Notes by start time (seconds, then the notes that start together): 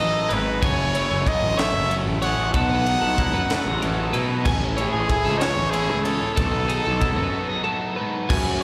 Already playing: F#2 F#3 A3 D#4 F#4 A4 D#5
0.00 A1
0.28 G#1 E4 B4, ride
0.34 B4
0.46 F#4
0.61 F#1 F#2 C#3 F#3 A3 C#4 A4 C#5 G#5, kick, crash
0.94 F#3 A3 C#4 E4 A4 C#5, ride
1.11 F#1 G#5
1.25 F#3 A3 C#4 A4 D#5, kick, ride
1.42 A1 A4
1.56 F#3 A3 C#4 A4 C#5 E5, snare, ride
1.61 A3
1.74 F#1
1.89 C#3 F#3 A3 C#4 A4 E5, ride
2.07 A1 E4
2.21 F#3 A3 C#4 A4 C#5 F#5, ride
2.25 G#4
2.38 A1
2.54 B1 B2 F#3 A3 D#4 A4 F#5, kick, ride
2.69 B4
2.86 A3 D#4 G#4 A4, ride
3.02 B1 A4
3.17 F#3 A3 D#4 E4 A4, kick, ride
3.34 F#2 F#4 B4
3.50 A3 D#4 A4, snare, ride
3.54 A3
3.65 A1 G#4
3.82 A1 F#2 F#3 A3 C#4 D#4 A4, ride
3.99 D#4
4.13 B2 A3 D#4 E4 A4 B4, ride
4.30 F#4
4.44 A1 A2 E3 A3 C#4 E4 A4 G#5, kick, crash
4.77 A3 C#4 E4 G#4 A4 C#5, ride
4.93 A1 G#5
5.09 E3 A3 C#4 E4 A4, kick, ride
5.25 C#2 A4
5.37 C#5 D#5
5.41 A3 C#4 E4 A4, snare, ride
5.58 A1
5.70 E2 A3 C#4 E4 G#4 E5, ride
5.75 E4 A4
5.89 C#2
6.04 A3 C#4 E4 G#4 A4 C#5, ride
6.22 A2
6.35 B1 B2 D#3 F#3 B3 D#4 A4, kick, ride
6.39 A4
6.52 B4
6.68 F#3 B3 D#4 G#4 A4, ride
6.85 B1 A4
6.99 F#3 B3 D#4 E4 A4, kick, ride
7.16 F#2 F#4 B4
7.31 B2 F#3 B3 D#4 A4
7.48 G#4
7.63 A2 F#3 B3 D#4 A4
7.96 G#2 F#3 B3 D#4 A4 B4
8.28 F#2 C#3 F#3 A3 C#4 F#4 G#5, kick, crash